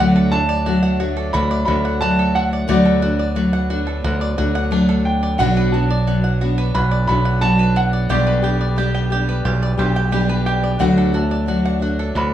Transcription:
Already playing: D3 F#5
0.00 D2 F#3 A3 D4 F#4
0.16 A4
0.32 A3 D4 F#4 A5
0.49 D5
0.66 F#3 A3 D4 F#4
0.83 F#5
1.00 A3 D4 F#4
1.17 A4
1.33 D2 F#4 B5
1.51 D5
1.65 D2 A3 D4 F#4 B5
1.85 F#5
2.00 F#3 A3 D4 F#4 A5
2.19 A4
2.35 F#4 F#5
2.53 D5
2.68 D2 D3 F#3 A3 B3 D4 F#4 D5
2.85 A4
3.01 A3 D4 F#4
3.19 D5
3.35 F#3 A3 D4 F#4
3.53 F#5
3.70 A3 D4 F#4
3.87 A4
4.04 D2 F#4
4.21 D5
4.38 D2 A3 D4 F#4
4.55 F#5
4.71 F#3 A3 D4
4.89 A4
5.05 G5
5.23 D5
5.38 B1 B2 F#3 B3 D4 F#4 F#5
5.57 B4
5.72 B3 D4 F#4 A5
5.90 D5
6.07 F#3 B3 D4 F#4
6.24 F#5
6.41 B3 D4 F#4
6.58 B4
6.75 B1 F#4 B5
6.91 D5
7.07 B1 B3 D4 F#4 B5
7.25 F#5
7.41 F#3 B3 D4 F#4 A5
7.59 B4
7.76 F#4 F#5
7.93 D5
8.09 B1 B2 G3 B3 D4 G4 D5
8.27 B4
8.42 B3 D4 G4
8.61 D5
8.76 G3 B3 D4 G4
8.95 G5
9.10 B3 D4 G4
9.29 B4
9.45 B1 G4
9.63 D5
9.78 B1 B3 D4 G4
9.96 G5
10.11 G3 B3 D4 G4
10.29 B4
10.46 G4 G5
10.63 D5
10.79 D2 D3 F#3 A3 D4 F#4 F#5
10.98 A4
11.13 A3 D4 F#4 A5
11.31 D5
11.46 F#3 A3 D4 F#4
11.65 F#5
11.79 A3 D4 F#4
11.99 A4
12.15 D2 F#4 B5

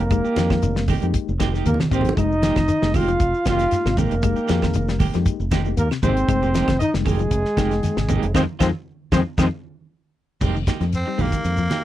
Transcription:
Already playing: A#3 A#4
0.00 F1, shekere
0.10 G#3 A#3 D#4 G4, kick, closed hi-hat, claves, shekere
0.25 A#3 D#4 G4, muted fingered electric bass stroke, shekere
0.36 F2 F3 G#3 A#3 D#4 G4, snare, closed hi-hat, high conga, shekere
0.50 F3, kick, snare, high conga, claves, shekere
0.62 F1 D#3, closed hi-hat, shekere
0.76 G3, snare, shekere
0.88 G#3 A#3 D#4 G4, kick, open hi-hat, high conga, low conga, claves, shekere
1.02 F2 G#3 A#3 D#4 G4, closed hi-hat, shekere
1.14 kick, closed hi-hat, shekere
1.28 F1, shekere
1.40 D#3 G#3 A#3 D#4 G4, kick, snare, closed hi-hat, high conga, claves, shekere
1.54 G#3 A#3 D#4 G4, snare, shekere
1.66 D#2 A#3 A#4, closed hi-hat, high conga, shekere
1.74 high conga
1.80 C3, snare, high conga, claves, shekere
1.91 G#1 C3 G#3 A#3 C4 D#4 G4 C5, kick, closed hi-hat, shekere
2.01 closed hi-hat, low conga
2.07 low conga, shekere
2.16 F1 G#3 D#4 D#5, kick, closed hi-hat, claves, shekere
2.32 shekere
2.42 F3 G#3 A#3 D#4 G4, snare, closed hi-hat, high conga, shekere
2.56 F1 F3, kick, snare, closed hi-hat, high conga, claves, shekere
2.68 D#3, closed hi-hat, shekere
2.82 F1 G3 G#3 A#3 D#4 G#4, snare, shekere
2.94 G#3 A#3 D#4 F4 G4 F5, kick, open hi-hat, high conga, low conga, claves, shekere
3.08 F3, closed hi-hat, shekere
3.20 F1, kick, closed hi-hat, shekere
3.34 shekere
3.45 F1 D#3 G#3 A#3 D#4 G4 F5, kick, snare, closed hi-hat, high conga, claves, shekere
3.49 F4
3.59 A#3 D#4 G4, snare, closed hi-hat, shekere
3.71 snare, closed hi-hat, shekere
3.86 G#1 C3, snare, claves, shekere
3.97 C3 G#3 A#3 D#4 G4 A#4, kick, closed hi-hat, high conga, low conga, shekere
4.11 F1, closed hi-hat, shekere
4.22 G#3 A#3 D#4 G4, kick, closed hi-hat, claves, shekere
4.36 A#3 D#4 G4, shekere
4.47 F2 F3 G#3 A#3 D#4 G4 G#4, snare, closed hi-hat, high conga, shekere
4.62 F3, kick, snare, high conga, claves, shekere
4.74 F1 D#3, closed hi-hat, shekere
4.88 G3, snare, shekere
4.99 G#3 A#3 G4, kick, open hi-hat, high conga, low conga, claves, shekere
5.14 F2 F3 G#3 A#3 D#4 G4, snare, closed hi-hat, shekere
5.26 kick, closed hi-hat, shekere
5.40 F1, shekere
5.51 D#3 G#3 A#3 D#4 G4, kick, snare, closed hi-hat, high conga, claves, shekere
5.65 G#3 A#3 D#4 G4, shekere
5.77 D#2 A#3 A#4, closed hi-hat, shekere
5.91 C3, snare, claves, shekere
6.02 G#1 C3 G#3 A#3 C4 D#4 G4 G#4 C5, kick, closed hi-hat, high conga, low conga, shekere
6.17 closed hi-hat, shekere
6.28 F1 G#3, kick, closed hi-hat, claves, shekere
6.42 A#3 D#4 G4, low conga, shekere
6.54 F3 G#3 A#3 D#4 G4, snare, closed hi-hat, high conga, shekere
6.68 F1 F3, kick, snare, closed hi-hat, high conga, claves, shekere
6.79 D#3 D#4 D#5, closed hi-hat, shekere
6.93 F1 G3 G#3 A#3 D#4 G4, snare, shekere
7.05 G#3 A#3 D#4 G4 G#4, kick, open hi-hat, high conga, low conga, claves, shekere
7.19 F3, closed hi-hat, shekere
7.31 F1, kick, closed hi-hat, shekere
7.45 snare, shekere
7.57 F1 D#3 G#3 A#3 D#4 G4 G5, kick, snare, closed hi-hat, high conga, claves, shekere
7.71 snare, closed hi-hat, shekere
7.83 snare, closed hi-hat, high conga, shekere
7.97 G#1 C3, snare, claves, shekere
8.08 C3 G#3 A#3 D#4 G4, kick, closed hi-hat, high conga, low conga, shekere
8.23 F1, closed hi-hat, shekere
8.34 F2 D#3 F3 G#3 C4 D#4 F4 C5, kick, snare, high conga, claves, shekere
8.59 F2 D#3 F3 G#3 C4 D#4 F4 C5, kick, snare, high conga, claves, shekere
9.12 F2 D#3 F3 G#3 C4 D#4 F4 C5, kick, snare, high conga, claves, shekere
9.38 F2 D#3 F3 G#3 C4 D#4 F4 C5, kick, snare, high conga, claves, shekere
10.41 F1 G3 G#3 A#3 D#4 G4, kick, crash, low conga, shekere
10.55 D#3, shekere
10.67 D#3 G#3 A#3 D#4 G4, kick, snare, closed hi-hat, high conga, shekere
10.81 F2 F3, snare, closed hi-hat
10.93 C4, closed hi-hat, shekere
11.06 G3 D#4, muted clean electric guitar stroke
11.18 A#1 G#3 A#3 D#4 G4, open hi-hat, high conga, low conga, shekere
11.32 kick, closed hi-hat, high conga, shekere
11.44 F2, closed hi-hat, shekere
11.57 F3, shekere
11.70 A#3 D#4 G4, snare, closed hi-hat, high conga

